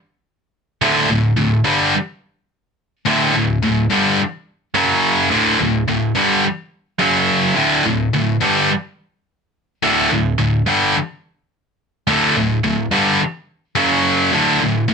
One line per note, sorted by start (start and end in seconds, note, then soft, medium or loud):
0.82 1.08 D2 loud
0.82 1.08 A2 loud
0.82 1.09 D3 loud
1.09 1.32 D2 medium
1.09 1.32 A2 medium
1.37 1.60 D2 medium
1.37 1.60 A2 medium
1.64 1.93 G2 loud
1.64 1.93 D3 loud
1.64 1.93 G3 loud
3.05 3.33 D2 loud
3.05 3.34 A2 loud
3.05 3.34 D3 loud
3.34 3.57 D2 medium
3.34 3.58 A2 medium
3.63 3.86 D2 medium
3.63 3.86 A2 medium
3.90 4.18 G2 loud
3.90 4.18 D3 loud
3.90 4.18 G3 loud
4.75 5.30 F#2 medium
4.75 5.30 C#3 medium
4.75 5.30 F#3 medium
5.31 5.58 D2 loud
5.31 5.58 A2 loud
5.31 5.59 D3 loud
5.59 5.82 D2 medium
5.59 5.82 A2 medium
5.88 6.11 D2 medium
5.88 6.11 A2 medium
6.15 6.43 G2 medium
6.15 6.43 D3 loud
6.15 6.44 G3 loud
6.99 7.55 F#2 medium
6.99 7.56 C#3 medium
6.99 7.56 F#3 medium
7.55 7.83 D2 loud
7.55 7.84 A2 loud
7.55 7.84 D3 loud
7.84 8.08 D2 medium
7.84 8.08 A2 medium
8.14 8.36 D2 medium
8.14 8.36 A2 medium
8.41 8.69 G2 loud
8.41 8.69 D3 loud
8.41 8.69 G3 loud
9.83 10.09 D2 loud
9.83 10.09 A2 loud
9.83 10.10 D3 loud
10.10 10.33 D2 medium
10.10 10.33 A2 medium
10.39 10.61 D2 medium
10.39 10.61 A2 medium
10.66 10.94 G2 medium
10.66 10.95 D3 loud
10.66 10.95 G3 loud
12.07 12.35 D2 loud
12.07 12.35 A2 loud
12.07 12.36 D3 loud
12.36 12.59 D2 medium
12.36 12.58 A2 medium
12.64 12.87 D2 medium
12.64 12.87 A2 medium
12.91 13.19 G2 loud
12.91 13.19 D3 loud
12.91 13.20 G3 loud
13.75 14.32 F#2 medium
13.75 14.32 C#3 medium
13.75 14.32 F#3 medium
14.32 14.60 D2 loud
14.32 14.60 A2 loud
14.32 14.61 D3 loud
14.61 14.84 D2 medium
14.61 14.84 A2 medium
14.88 14.94 D2 medium
14.88 14.94 A2 medium